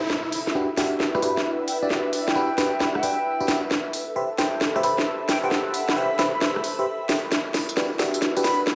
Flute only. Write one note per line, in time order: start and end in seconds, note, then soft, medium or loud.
1.23 1.38 B5 medium
1.68 1.77 G5 medium
1.83 1.88 G5 medium
2.27 2.89 G5 loud
2.95 3.57 G5 medium
4.83 4.99 B5 medium
5.29 5.38 G5 medium
5.43 5.48 G5 medium
6.19 6.28 B5 medium
6.34 6.39 B5 medium
8.44 8.60 B5 medium